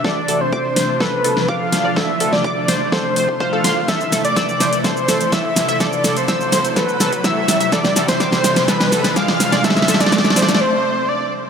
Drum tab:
HH |----o-------o-------o-------o---|----o-------o-------o-------o---|x---o-x-x---o-x-x---o-x-x---o-x-|x---o-x-x---o-x-x---o-x-x---o-x-|
SH |--------------------------------|--------------------------------|x-x-x-x-x-x-x-x-x-x-x-x-x---x-x-|x-x-x-x-x-x-x-x-x-x-x-x-x---x-x-|
SD |o-----------o---o-----o-----o---|o-----o-----o---o-----------o---|o---o---o---o---o---o---o---o---|o---o---o---o---o---o---o---o---|
BD |o-------o-------o-------o-------|o-------o-------o-----o-o-------|o-------o-------o-------o-------|o-------o-------o-----o-o-------|

HH |x---o-x-x---o-x-x---o-x-x---o-x-|x---o-x-x---o-x-----------------|
SH |x-x-x-x-x-x-x-x-x-x-x-x-x---x-x-|x-x-x-x-x-x-x-x-----------------|
SD |o-o-o-o-o-o-o-o-o-o-o-o-o-o-o-o-|oooooooooooooooo----------------|
BD |o-------o-------o-------o-------|o-------o-----------------------|